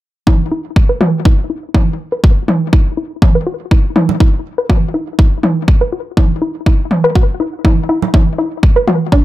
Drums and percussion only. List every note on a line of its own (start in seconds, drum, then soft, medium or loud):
0.27 kick loud
0.27 high tom medium
0.76 kick loud
1.01 high tom medium
1.25 kick loud
1.74 kick loud
1.74 high tom medium
2.24 kick loud
2.48 high tom medium
2.73 kick loud
3.22 kick loud
3.22 high tom medium
3.71 kick loud
3.96 high tom medium
4.09 low conga medium
4.20 kick loud
4.70 kick loud
4.70 high tom medium
5.19 kick loud
5.43 high tom medium
5.68 kick loud
6.17 kick loud
6.17 high tom medium
6.66 kick loud
6.91 high tom medium
7.15 kick loud
7.65 kick loud
7.65 high tom medium
8.02 low conga medium
8.14 kick loud
8.14 high tom medium
8.63 kick loud
8.88 high tom medium
9.12 kick loud